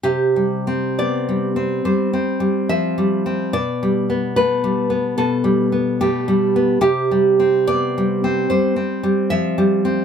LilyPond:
\new Staff \with { instrumentName = "Nylon-string guitar" } { \time 4/4 \key c \major \tempo 4 = 72 << { g'4 d''4 c''4 e''4 | d''4 b'4 a'4 g'4 | g'4 d''4 c''4 e''4 | } \\ { \tuplet 3/2 { c8 g8 c'8 b8 g8 c'8 g8 c'8 g8 f8 g8 c'8 } | \tuplet 3/2 { b,8 g8 b8 a8 g8 b8 b,8 g8 b8 a8 g8 b8 } | \tuplet 3/2 { c8 g8 c'8 b8 g8 c'8 g8 c'8 g8 f8 g8 c'8 } | } >> }